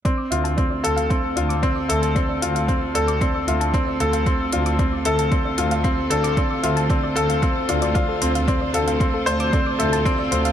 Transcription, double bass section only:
\new Staff \with { instrumentName = "Double bass section" } { \clef bass \time 4/4 \key d \minor \tempo 4 = 114 r8 d,8 r8 d,8 r8 d,8 r8 d,8 | r8 d,8 r8 d,8 r8 d,8 r8 d,8 | r8 d,8 r8 d,8 r8 d,8 r8 d,8 | r8 d,8 r8 d,8 r8 d,8 r8 d,8 |
r8 d,8 r8 d,8 r8 d,8 r8 d,8 | }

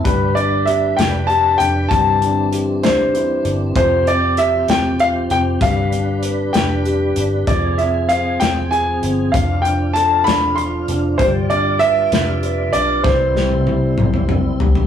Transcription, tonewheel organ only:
<<
  \new Staff \with { instrumentName = "Tonewheel organ" } { \time 6/8 \key c \major \tempo 4. = 65 << { b'2. | r2. | g'2. | b'2. |
aes'2. | f'2. | d''2. | e'2. | } \\ { d'2. | c'2.~ | c'2. | d'2. |
c'2. | d'2. | f'2. | r2. | } >> }
  \new Staff \with { instrumentName = "Tonewheel organ" } { \clef bass \time 6/8 \key c \major g2. | e2. | f2. | g2. |
f2.~ | f2. | g2. | c'2. | }
>>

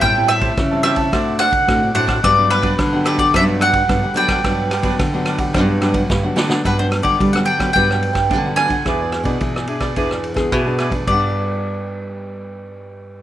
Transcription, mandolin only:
\new Staff \with { instrumentName = "Mandolin" } { \time 4/4 \key g \major \tempo 4 = 109 g''8 e''4 e''4 fis''4 fis''8 | d''8 b'4 b'16 d''16 e''8 fis''4 g''8~ | g''2. r4 | b'16 c''8 d''8 fis''16 g''8 g''4. aes''8~ |
aes''2. r4 | d''1 | }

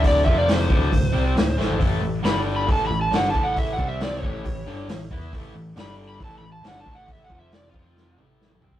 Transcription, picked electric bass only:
\new Staff \with { instrumentName = "Picked electric bass" } { \clef bass \time 4/4 \key a \dorian \tempo 4 = 136 d,,8 f,,4 d,,8 d,,8 c,8 d,,8 a,,8 | a,,8 a,,8 g,,4 a,,8 a,,8 g,,8 a,,8~ | a,,8 c,4 a,,8 a,,8 g,,8 a,,8 e,8 | a,,8 a,,8 g,,4 a,,8 a,,8 g,,8 a,,8~ |
a,,8 f,,4 f,,4 a,,4 c,8 | }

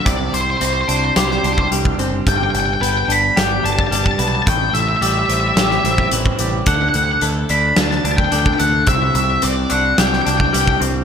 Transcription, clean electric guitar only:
\new Staff \with { instrumentName = "Clean electric guitar" } { \time 4/4 \key c \lydian \tempo 4 = 109 c4 c'8 d'8 g'8 d'8 g8 c'8 | g,4 b8 d'8 g'8 d'8 g8 b8 | a,4 g8 c'8 g'8 c'8 e8 g8 | d4 a8 d'4 d'8 d8 a8 |
c4 c'8 d'8 g'8 d'8 g8 c'8 | }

